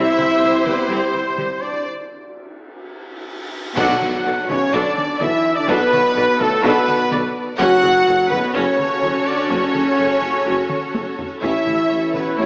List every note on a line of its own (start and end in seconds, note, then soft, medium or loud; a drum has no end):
0.00 1.82 C3 medium
0.00 1.82 G3 medium
0.00 0.17 C4 medium
0.00 1.86 C4 loud
0.00 0.62 E4 loud
0.00 1.82 E4 medium
0.00 1.86 G4 loud
0.00 1.82 C5 medium
0.00 1.86 C5 loud
0.00 0.62 E5 loud
0.00 0.63 E5 loud
0.18 0.28 C2 medium
0.18 0.27 C2 medium
0.18 0.26 C3 medium
0.18 0.27 E4 medium
0.18 taiko mid medium
0.42 0.50 C2 medium
0.42 0.52 C2 medium
0.42 0.50 C3 medium
0.42 0.50 G4 medium
0.65 0.74 C2 medium
0.65 0.76 C2 medium
0.65 0.73 C3 medium
0.65 0.90 B3 loud
0.65 0.75 E4 medium
0.65 0.90 B4 medium
0.65 taiko mid medium
0.89 1.00 C2 medium
0.89 0.98 C2 medium
0.89 0.97 C3 medium
0.89 1.62 C4 medium
0.89 1.13 C4 medium
0.89 1.62 C5 medium
0.89 1.61 C5 medium
1.14 taiko mid medium
1.37 1.45 C2 medium
1.37 1.47 C2 medium
1.37 1.46 C3 medium
1.37 1.46 G4 medium
1.37 taiko mid medium
1.62 1.86 D4 medium
1.62 1.86 D5 medium
1.85 cymbal swell medium
3.77 3.99 B1 medium
3.77 3.99 B1 loud
3.77 4.45 B2 loud
3.77 3.99 B2 loud
3.77 4.45 F#3 loud
3.77 7.56 B3 loud
3.77 3.99 D4 loud
3.77 7.56 F#4 loud
3.77 4.45 F#4 loud
3.77 3.99 A4 loud
3.77 7.56 A4 loud
3.77 7.56 D5 loud
3.77 4.45 F#5 loud
3.77 concert bass drum loud
3.77 taiko loud
3.77 crash medium
3.77 sub drop medium
4.01 4.09 B1 medium
4.01 4.11 B1 medium
4.01 4.10 B2 medium
4.01 4.10 F#4 medium
4.01 4.10 B4 medium
4.01 taiko mid medium
4.25 4.34 B1 medium
4.25 4.35 B1 medium
4.25 4.34 B2 medium
4.25 4.33 A4 medium
4.25 4.34 D5 medium
4.48 4.59 B1 medium
4.48 4.58 B1 medium
4.48 4.58 B2 medium
4.48 4.72 C#3 loud
4.48 4.72 C#4 loud
4.48 4.57 F#4 medium
4.48 4.57 B4 medium
4.48 4.72 C#5 medium
4.48 4.73 C#5 loud
4.48 4.73 C#5 medium
4.48 taiko mid medium
4.72 4.83 B1 loud
4.72 4.82 B1 medium
4.72 4.81 B2 medium
4.72 5.20 D3 loud
4.72 4.95 D4 loud
4.72 5.21 D4 loud
4.72 4.95 A4 medium
4.72 5.20 D5 medium
4.72 5.21 D5 medium
4.98 taiko mid medium
5.20 5.31 B1 medium
5.20 5.30 B1 medium
5.20 5.29 B2 medium
5.20 5.56 E3 loud
5.20 5.55 E4 loud
5.20 5.28 A4 medium
5.20 5.28 D5 medium
5.20 5.56 E5 medium
5.20 5.57 E5 loud
5.20 5.57 E5 medium
5.20 taiko mid medium
5.45 taiko rim soft
5.56 5.69 D3 medium
5.56 5.69 D4 loud
5.56 5.67 D5 medium
5.56 5.68 D5 medium
5.56 5.68 D5 loud
5.67 5.78 B1 loud
5.67 5.77 B1 loud
5.67 5.77 B2 loud
5.67 6.41 B2 loud
5.67 6.40 B3 loud
5.67 5.90 D4 loud
5.67 5.90 A4 loud
5.67 6.39 B4 loud
5.67 6.40 B4 loud
5.67 taiko loud
5.91 6.02 B1 medium
5.91 6.01 B1 medium
5.91 6.00 B2 medium
5.91 5.99 F#4 medium
5.91 5.99 B4 medium
5.91 taiko mid medium
6.16 6.25 B1 medium
6.16 6.25 B2 medium
6.16 6.24 A4 medium
6.16 6.24 D5 medium
6.38 6.50 B1 medium
6.38 6.49 B1 medium
6.38 6.64 A2 loud
6.38 6.48 B2 medium
6.38 6.63 A3 loud
6.38 6.48 F#4 medium
6.38 6.63 A4 loud
6.38 6.64 A4 loud
6.38 6.64 A4 medium
6.38 6.48 B4 medium
6.38 taiko mid medium
6.63 6.73 B1 loud
6.63 6.72 B2 loud
6.63 7.36 B2 loud
6.63 7.35 B3 loud
6.63 6.86 D4 loud
6.63 6.86 A4 loud
6.63 7.35 B4 loud
6.63 7.36 B4 loud
6.88 taiko mid medium
7.11 7.21 B1 medium
7.11 7.20 B1 medium
7.11 7.20 B2 medium
7.11 7.19 A4 loud
7.11 7.19 D5 medium
7.11 taiko mid medium
7.59 7.69 F#1 loud
7.59 7.67 F#1 medium
7.59 8.27 F#2 loud
7.59 7.67 F#2 loud
7.59 8.27 F#3 loud
7.59 11.42 C#4 loud
7.59 7.81 C#4 loud
7.59 7.81 F#4 loud
7.59 11.38 F#4 loud
7.59 8.27 F#4 loud
7.59 11.38 A4 loud
7.59 11.41 C#5 loud
7.59 8.27 F#5 loud
7.59 taiko loud
7.83 7.92 F#1 medium
7.83 7.91 F#1 medium
7.83 7.91 F#2 medium
7.83 7.91 F#4 medium
7.83 7.91 A4 medium
7.83 taiko mid medium
8.07 8.16 F#1 medium
8.07 8.15 F#1 medium
8.07 8.15 F#2 medium
8.07 8.15 A4 medium
8.07 8.15 C#5 medium
8.30 8.39 F#1 medium
8.30 8.40 F#1 medium
8.30 8.39 F#2 medium
8.30 8.55 B2 loud
8.30 8.55 B3 loud
8.30 8.38 F#4 medium
8.30 8.38 A4 medium
8.30 8.54 B4 loud
8.30 8.55 B4 loud
8.30 taiko mid medium
8.54 8.64 F#1 loud
8.54 8.63 F#1 loud
8.54 8.62 F#2 medium
8.54 9.27 C#3 medium
8.54 8.77 C#4 medium
8.54 9.26 C#4 loud
8.54 8.77 F#4 medium
8.54 9.26 C#5 loud
8.54 9.25 C#5 medium
8.54 9.27 C#5 medium
8.79 taiko mid medium
9.02 9.10 F#1 medium
9.02 9.12 F#1 medium
9.02 9.10 F#2 medium
9.02 9.11 A4 medium
9.02 9.11 C#5 medium
9.02 taiko mid medium
9.26 9.51 D3 medium
9.26 9.51 D4 loud
9.26 9.50 D5 medium
9.26 9.51 D5 medium
9.50 9.60 F#1 medium
9.50 9.59 F#1 medium
9.50 9.58 F#2 medium
9.50 11.19 C#3 medium
9.50 9.73 C#4 medium
9.50 11.19 C#4 loud
9.50 9.73 F#4 medium
9.50 11.18 C#5 medium
9.50 11.15 C#5 medium
9.50 taiko loud
9.74 9.84 F#1 medium
9.74 9.83 F#1 medium
9.74 9.83 F#2 medium
9.74 9.82 F#4 medium
9.74 9.82 A4 medium
9.74 taiko mid medium
9.98 10.08 F#1 medium
9.98 10.07 F#1 medium
9.98 10.06 F#2 medium
9.98 10.07 A4 medium
9.98 10.06 C#5 medium
10.22 10.32 F#1 soft
10.22 10.31 F#1 medium
10.22 10.30 F#2 medium
10.22 10.30 F#4 soft
10.22 10.30 A4 medium
10.22 taiko mid soft
10.46 10.56 F#1 medium
10.46 10.55 F#1 medium
10.46 10.54 F#2 medium
10.46 10.69 C#4 medium
10.46 10.68 F#4 medium
10.70 taiko mid medium
10.93 11.04 F#1 medium
10.93 11.03 F#1 soft
10.93 11.02 F#2 soft
10.93 11.01 A4 medium
10.93 11.01 C#5 medium
10.93 taiko high medium
11.19 taiko low loud
11.41 11.52 A1 medium
11.41 11.51 A1 medium
11.41 11.50 A2 medium
11.41 12.10 E3 medium
11.41 11.64 C#4 medium
11.41 12.46 C#4 medium
11.41 11.64 E4 medium
11.41 12.46 E4 medium
11.41 12.11 E4 loud
11.41 12.46 A4 medium
11.41 12.46 C#5 medium
11.41 12.10 E5 medium
11.41 taiko medium
11.65 11.74 A1 medium
11.65 11.76 A1 medium
11.65 11.73 A2 medium
11.65 11.74 E4 medium
11.65 11.73 A4 medium
11.65 taiko mid medium
11.89 11.98 A1 medium
11.89 12.00 A1 medium
11.89 11.98 A2 soft
11.89 11.97 A4 medium
11.89 11.97 C#5 medium
12.14 12.22 A1 medium
12.14 12.24 A1 medium
12.14 12.22 A2 medium
12.14 12.38 B2 medium
12.14 12.38 B3 medium
12.14 12.22 E4 medium
12.14 12.22 A4 soft
12.14 12.38 B4 medium
12.14 taiko mid medium
12.38 12.46 A1 medium
12.38 12.46 A2 medium
12.38 12.46 C#3 medium
12.38 12.46 C#4 medium
12.38 12.46 E4 medium
12.38 12.46 C#5 medium